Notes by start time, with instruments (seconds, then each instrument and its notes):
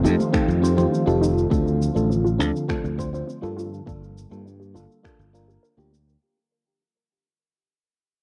Already playing: analog synth pad D#3 F3 A3 C4 F4
0.03 fingered electric bass F2, fm electric piano C4 D#4 G4 A4, synth pluck D#4, shaker
0.20 high conga, shaker
0.33 synth pluck A3, fm electric piano C4 D#4 G4 A4, finger snap, kick, shaker
0.48 fingered electric bass F2, shaker
0.62 fm electric piano C4 D#4 G4 C5, shaker
0.76 fm electric piano C4 D#4 G4 C5, low conga, shaker
0.92 synth pluck C4, shaker
1.06 fingered electric bass F1, fm electric piano C4 D#4 G4 A4, synth pluck F4, shaker
1.21 synth pluck D#4, shaker
1.38 shaker
1.50 fingered electric bass D2, analog synth pad D3 F3, synth pluck A3, fm electric piano C4 D4 F4 A4, kick, shaker
1.68 shaker
1.82 shaker
1.94 fingered electric bass A1, fm electric piano C4 D4 F4 A4, shaker
2.10 synth pluck C4, shaker
2.24 synth pluck F4, shaker
2.38 fingered electric bass D2, fm electric piano C4 D4 F4 A4, synth pluck D4, shaker
2.56 shaker
2.68 synth pluck A3, fm electric piano C4 D4 F4 A4, finger snap, kick, shaker
2.84 fingered electric bass D2, shaker
2.98 fm electric piano C4 D4 F4 C5, kick, shaker
3.13 fm electric piano C4 D4 F4 C5, shaker
3.27 synth pluck C4, shaker
3.42 fingered electric bass G2, fm electric piano A#3 D4 F4 A4, synth pluck F4, shaker
3.57 analog synth pad G3 A#3, synth pluck F4, shaker
3.74 shaker
3.86 fingered electric bass G1, fm electric piano A#3 D4 F4 A4, synth pluck A#3, kick, shaker
4.04 shaker
4.18 shaker
4.30 fingered electric bass G2, fm electric piano A#3 D4 F4 A4, shaker
4.45 synth pluck D4, shaker
4.60 synth pluck G4, shaker
4.74 fingered electric bass G1, fm electric piano A#3 D4 F4 A4, synth pluck F4, shaker
4.92 shaker
5.03 fm electric piano A#3 D4 F4 A4, synth pluck A#3, finger snap, kick, shaker
5.19 fingered electric bass G1, shaker
5.33 fm electric piano A#3 D4 F4 A#4, shaker
5.48 synth pluck G4, shaker
5.63 synth pluck A#4, shaker
5.77 fingered electric bass D2, fm electric piano A#3 D4 F4 G4, synth pluck A#3, shaker
5.92 synth pluck A#3, shaker
6.09 shaker